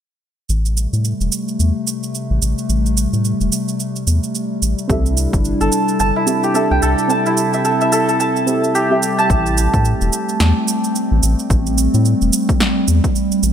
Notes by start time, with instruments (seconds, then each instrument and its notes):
0.49 analog synth bass A1, ambient pad C3 G3 A3, shaker
0.66 shaker
0.77 shaker
0.93 analog synth bass A2, shaker
1.05 shaker
1.20 analog synth bass E1, shaker
1.32 shaker
1.48 shaker
1.59 analog synth bass E2, shaker
1.87 shaker
2.03 shaker
2.15 shaker
2.30 analog synth bass A1
2.42 analog synth bass A1, shaker
2.58 shaker
2.69 analog synth bass A1, shaker
2.86 shaker
2.97 shaker
3.13 analog synth bass A2, shaker
3.25 shaker
3.41 analog synth bass E1, shaker
3.52 shaker
3.68 shaker
3.80 shaker
3.96 shaker
4.07 analog synth bass E2, shaker
4.23 shaker
4.35 shaker
4.62 analog synth bass A1, shaker
4.78 shaker
4.88 analog synth bass C2, ambient pad C3 D4 E4, synth stab C4 G4 A4, kick, shaker
4.92 synth stab E5
5.06 shaker
5.17 shaker
5.33 analog synth bass G1, kick, shaker
5.45 shaker
5.61 analog synth bass G1, santur A4, shaker
5.72 shaker
5.88 shaker
6.00 analog synth bass G1, santur A5, shaker
6.16 santur E4
6.26 synth stab C4 G4 A4 E5, shaker
6.43 santur G4, shaker
6.54 synth stab C4 G4 A4 E5, santur A4, shaker
6.71 analog synth bass C2, santur G5
6.82 analog synth bass C2, santur A4, shaker
6.98 shaker
7.08 synth stab C4 G4 A4, ambient pad C4, santur A5, shaker
7.12 synth stab E5
7.26 santur E4, shaker
7.37 shaker
7.53 santur E5, shaker
7.65 santur A4, shaker
7.81 santur E5, shaker
7.92 santur A4, shaker
8.09 santur A4, shaker
8.20 santur A5, shaker
8.36 shaker
8.46 synth stab C4 G4 A4 E5, shaker
8.64 shaker
8.75 santur G4, shaker
8.90 synth stab C4 G4 A4 E5
9.03 shaker
9.18 santur A5, shaker
9.30 analog synth bass A1, ambient pad G3 A3 C4, kick, shaker
9.46 shaker
9.57 shaker
9.74 analog synth bass A2, kick, shaker
9.85 shaker
10.01 analog synth bass E1, shaker
10.13 shaker
10.29 shaker
10.40 analog synth bass E2, snare, shaker
10.68 shaker
10.84 shaker
10.95 shaker
11.11 analog synth bass A1
11.23 analog synth bass A1, shaker
11.39 shaker
11.50 analog synth bass A1, kick, shaker
11.66 shaker
11.78 shaker
11.94 analog synth bass A2, shaker
12.05 shaker
12.21 analog synth bass E1, shaker
12.33 shaker
12.49 kick, shaker
12.60 snare, shaker
12.88 analog synth bass E2, shaker
13.04 kick, shaker
13.16 shaker
13.32 shaker
13.43 analog synth bass A1, shaker